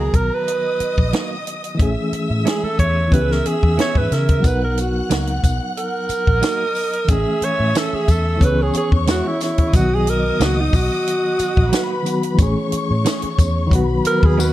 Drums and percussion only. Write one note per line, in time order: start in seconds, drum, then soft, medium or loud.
0.14 kick medium
0.14 closed hi-hat medium
0.48 closed hi-hat medium
0.80 closed hi-hat medium
0.98 kick medium
1.13 snare medium
1.13 closed hi-hat medium
1.47 closed hi-hat medium
1.64 closed hi-hat medium
1.79 kick loud
1.79 closed hi-hat medium
2.13 closed hi-hat medium
2.47 snare loud
2.47 closed hi-hat medium
2.79 kick medium
2.79 closed hi-hat medium
3.12 kick medium
3.12 closed hi-hat medium
3.32 snare soft
3.46 closed hi-hat medium
3.63 kick medium
3.79 snare loud
3.79 closed hi-hat medium
3.95 kick medium
4.12 snare soft
4.12 closed hi-hat medium
4.29 kick medium
4.29 closed hi-hat medium
4.44 kick loud
4.44 closed hi-hat medium
4.44 tambourine soft
4.77 closed hi-hat medium
4.77 tambourine soft
5.11 snare loud
5.11 closed hi-hat medium
5.11 tambourine medium
5.27 closed hi-hat soft
5.44 kick medium
5.44 closed hi-hat medium
5.44 tambourine medium
5.77 closed hi-hat medium
6.09 closed hi-hat medium
6.09 tambourine soft
6.27 kick medium
6.43 snare loud
6.43 closed hi-hat medium
6.43 tambourine medium
6.75 open hi-hat soft
6.75 tambourine soft
6.93 closed hi-hat medium
7.08 kick loud
7.08 closed hi-hat medium
7.08 tambourine soft
7.42 closed hi-hat medium
7.75 snare loud
7.75 closed hi-hat medium
7.75 tambourine medium
8.08 kick medium
8.08 closed hi-hat medium
8.08 tambourine soft
8.41 kick medium
8.41 closed hi-hat medium
8.41 tambourine soft
8.74 closed hi-hat medium
8.74 tambourine soft
8.92 kick medium
9.07 snare loud
9.07 closed hi-hat medium
9.07 tambourine medium
9.41 snare soft
9.41 closed hi-hat medium
9.41 tambourine medium
9.58 kick medium
9.58 closed hi-hat medium
9.73 kick loud
9.73 closed hi-hat medium
9.73 tambourine soft
10.07 closed hi-hat medium
10.40 snare loud
10.40 closed hi-hat medium
10.40 tambourine medium
10.73 kick medium
10.73 open hi-hat soft
10.73 tambourine medium
11.07 closed hi-hat medium
11.39 closed hi-hat medium
11.39 tambourine soft
11.57 kick medium
11.73 snare loud
11.73 closed hi-hat medium
11.73 tambourine medium
12.06 closed hi-hat medium
12.06 tambourine soft
12.23 closed hi-hat medium
12.38 kick loud
12.38 closed hi-hat medium
12.38 tambourine medium
12.72 closed hi-hat medium
12.72 tambourine soft
13.06 snare loud
13.06 closed hi-hat loud
13.06 tambourine medium
13.22 closed hi-hat medium
13.39 kick medium
13.39 closed hi-hat medium
13.39 tambourine medium
13.71 kick medium
13.71 closed hi-hat medium
13.71 tambourine soft
14.05 closed hi-hat medium
14.05 tambourine soft
14.23 kick medium
14.40 tambourine medium